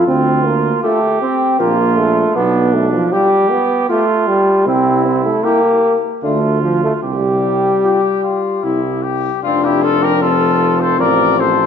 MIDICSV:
0, 0, Header, 1, 6, 480
1, 0, Start_track
1, 0, Key_signature, -1, "major"
1, 0, Tempo, 768246
1, 42, Time_signature, 3, 2, 24, 8
1, 3402, Tempo, 798935
1, 5802, Tempo, 780234
1, 7170, End_track
2, 0, Start_track
2, 0, Title_t, "Trumpet"
2, 0, Program_c, 0, 56
2, 520, Note_on_c, 0, 69, 55
2, 620, Note_off_c, 0, 69, 0
2, 995, Note_on_c, 0, 67, 56
2, 1095, Note_off_c, 0, 67, 0
2, 1953, Note_on_c, 0, 67, 58
2, 2053, Note_off_c, 0, 67, 0
2, 2429, Note_on_c, 0, 67, 54
2, 2529, Note_off_c, 0, 67, 0
2, 3397, Note_on_c, 0, 67, 59
2, 3494, Note_off_c, 0, 67, 0
2, 3871, Note_on_c, 0, 65, 54
2, 3967, Note_off_c, 0, 65, 0
2, 4836, Note_on_c, 0, 67, 69
2, 5062, Note_off_c, 0, 67, 0
2, 5074, Note_on_c, 0, 65, 67
2, 5317, Note_on_c, 0, 64, 66
2, 5326, Note_off_c, 0, 65, 0
2, 5553, Note_on_c, 0, 67, 65
2, 5562, Note_off_c, 0, 64, 0
2, 5792, Note_off_c, 0, 67, 0
2, 5796, Note_on_c, 0, 65, 81
2, 5927, Note_on_c, 0, 67, 78
2, 5936, Note_off_c, 0, 65, 0
2, 6039, Note_on_c, 0, 69, 91
2, 6048, Note_off_c, 0, 67, 0
2, 6169, Note_on_c, 0, 70, 82
2, 6178, Note_off_c, 0, 69, 0
2, 6282, Note_on_c, 0, 69, 83
2, 6292, Note_off_c, 0, 70, 0
2, 6641, Note_off_c, 0, 69, 0
2, 6645, Note_on_c, 0, 72, 78
2, 6762, Note_on_c, 0, 74, 92
2, 6772, Note_off_c, 0, 72, 0
2, 7006, Note_on_c, 0, 72, 79
2, 7015, Note_off_c, 0, 74, 0
2, 7170, Note_off_c, 0, 72, 0
2, 7170, End_track
3, 0, Start_track
3, 0, Title_t, "Flugelhorn"
3, 0, Program_c, 1, 56
3, 37, Note_on_c, 1, 65, 73
3, 509, Note_off_c, 1, 65, 0
3, 520, Note_on_c, 1, 67, 80
3, 986, Note_off_c, 1, 67, 0
3, 997, Note_on_c, 1, 65, 77
3, 1470, Note_on_c, 1, 62, 63
3, 1479, Note_off_c, 1, 65, 0
3, 1944, Note_off_c, 1, 62, 0
3, 1948, Note_on_c, 1, 67, 80
3, 2420, Note_off_c, 1, 67, 0
3, 2431, Note_on_c, 1, 65, 80
3, 2906, Note_off_c, 1, 65, 0
3, 2919, Note_on_c, 1, 64, 70
3, 3400, Note_on_c, 1, 67, 78
3, 3409, Note_off_c, 1, 64, 0
3, 3708, Note_off_c, 1, 67, 0
3, 3872, Note_on_c, 1, 65, 65
3, 4330, Note_off_c, 1, 65, 0
3, 4354, Note_on_c, 1, 67, 69
3, 5538, Note_off_c, 1, 67, 0
3, 5806, Note_on_c, 1, 60, 74
3, 5917, Note_off_c, 1, 60, 0
3, 5925, Note_on_c, 1, 64, 67
3, 6044, Note_on_c, 1, 65, 73
3, 6053, Note_off_c, 1, 64, 0
3, 6162, Note_on_c, 1, 67, 72
3, 6172, Note_off_c, 1, 65, 0
3, 6278, Note_off_c, 1, 67, 0
3, 6282, Note_on_c, 1, 65, 77
3, 6641, Note_on_c, 1, 69, 73
3, 6651, Note_off_c, 1, 65, 0
3, 6756, Note_off_c, 1, 69, 0
3, 6760, Note_on_c, 1, 70, 87
3, 6996, Note_off_c, 1, 70, 0
3, 7000, Note_on_c, 1, 69, 66
3, 7170, Note_off_c, 1, 69, 0
3, 7170, End_track
4, 0, Start_track
4, 0, Title_t, "French horn"
4, 0, Program_c, 2, 60
4, 524, Note_on_c, 2, 65, 59
4, 624, Note_off_c, 2, 65, 0
4, 999, Note_on_c, 2, 65, 64
4, 1099, Note_off_c, 2, 65, 0
4, 1950, Note_on_c, 2, 65, 67
4, 2050, Note_off_c, 2, 65, 0
4, 2432, Note_on_c, 2, 65, 70
4, 2532, Note_off_c, 2, 65, 0
4, 3398, Note_on_c, 2, 64, 63
4, 3494, Note_off_c, 2, 64, 0
4, 3876, Note_on_c, 2, 62, 63
4, 3972, Note_off_c, 2, 62, 0
4, 4840, Note_on_c, 2, 65, 56
4, 4936, Note_off_c, 2, 65, 0
4, 5317, Note_on_c, 2, 64, 57
4, 5414, Note_off_c, 2, 64, 0
4, 5802, Note_on_c, 2, 62, 87
4, 6287, Note_on_c, 2, 60, 67
4, 6296, Note_off_c, 2, 62, 0
4, 7170, Note_off_c, 2, 60, 0
4, 7170, End_track
5, 0, Start_track
5, 0, Title_t, "Trombone"
5, 0, Program_c, 3, 57
5, 45, Note_on_c, 3, 60, 84
5, 283, Note_on_c, 3, 58, 75
5, 292, Note_off_c, 3, 60, 0
5, 516, Note_off_c, 3, 58, 0
5, 520, Note_on_c, 3, 57, 91
5, 753, Note_off_c, 3, 57, 0
5, 759, Note_on_c, 3, 60, 84
5, 995, Note_on_c, 3, 58, 91
5, 1004, Note_off_c, 3, 60, 0
5, 1232, Note_on_c, 3, 57, 87
5, 1242, Note_off_c, 3, 58, 0
5, 1469, Note_off_c, 3, 57, 0
5, 1472, Note_on_c, 3, 59, 94
5, 1709, Note_on_c, 3, 57, 81
5, 1719, Note_off_c, 3, 59, 0
5, 1832, Note_on_c, 3, 53, 83
5, 1842, Note_off_c, 3, 57, 0
5, 1952, Note_on_c, 3, 55, 88
5, 1961, Note_off_c, 3, 53, 0
5, 2191, Note_on_c, 3, 59, 91
5, 2200, Note_off_c, 3, 55, 0
5, 2429, Note_off_c, 3, 59, 0
5, 2433, Note_on_c, 3, 57, 94
5, 2670, Note_on_c, 3, 55, 91
5, 2680, Note_off_c, 3, 57, 0
5, 2913, Note_on_c, 3, 60, 95
5, 2923, Note_off_c, 3, 55, 0
5, 3150, Note_off_c, 3, 60, 0
5, 3154, Note_on_c, 3, 60, 81
5, 3276, Note_off_c, 3, 60, 0
5, 3280, Note_on_c, 3, 57, 85
5, 3399, Note_on_c, 3, 58, 97
5, 3408, Note_off_c, 3, 57, 0
5, 3708, Note_off_c, 3, 58, 0
5, 3875, Note_on_c, 3, 57, 76
5, 4098, Note_off_c, 3, 57, 0
5, 4113, Note_on_c, 3, 53, 77
5, 4232, Note_off_c, 3, 53, 0
5, 4240, Note_on_c, 3, 57, 75
5, 4294, Note_off_c, 3, 57, 0
5, 4355, Note_on_c, 3, 55, 86
5, 5302, Note_off_c, 3, 55, 0
5, 5806, Note_on_c, 3, 53, 65
5, 7170, Note_off_c, 3, 53, 0
5, 7170, End_track
6, 0, Start_track
6, 0, Title_t, "Tuba"
6, 0, Program_c, 4, 58
6, 44, Note_on_c, 4, 38, 69
6, 442, Note_off_c, 4, 38, 0
6, 997, Note_on_c, 4, 34, 73
6, 1395, Note_off_c, 4, 34, 0
6, 1472, Note_on_c, 4, 35, 78
6, 1871, Note_off_c, 4, 35, 0
6, 2915, Note_on_c, 4, 36, 80
6, 3321, Note_off_c, 4, 36, 0
6, 3875, Note_on_c, 4, 38, 66
6, 4274, Note_off_c, 4, 38, 0
6, 4354, Note_on_c, 4, 36, 66
6, 4759, Note_off_c, 4, 36, 0
6, 5322, Note_on_c, 4, 36, 66
6, 5723, Note_off_c, 4, 36, 0
6, 5804, Note_on_c, 4, 29, 65
6, 6763, Note_on_c, 4, 33, 59
6, 6772, Note_off_c, 4, 29, 0
6, 7170, Note_off_c, 4, 33, 0
6, 7170, End_track
0, 0, End_of_file